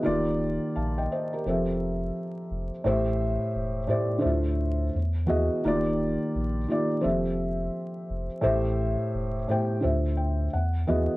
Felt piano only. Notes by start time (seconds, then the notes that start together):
0.03 D#3 A#3 F4 G4 D5
0.76 F5 A5
0.98 D#5 G5
1.12 C5 D#5
1.33 G4 A#4
1.46 F3 C4 G4 A4 E5
2.84 A2 A3 G4 C5 E5
3.87 A2 A3 G4 C5 D5
4.18 D3 A3 E4 C5 E5
4.27 F4
5.26 E3 B3 F#4 G#4 D#5
5.64 D#3 A#3 F4 G4 D5
6.68 D#3 A#3 F4 G4 D5
7.01 F3 C4 G4 A4 E5
8.41 A2 A3 G4 C5 E5
9.48 A2 A3 G4 C5 G5
9.81 D3 A3 F4 C5 E5
10.17 G5
10.53 F#5
10.87 E3 B3 F#4 G#4 D#5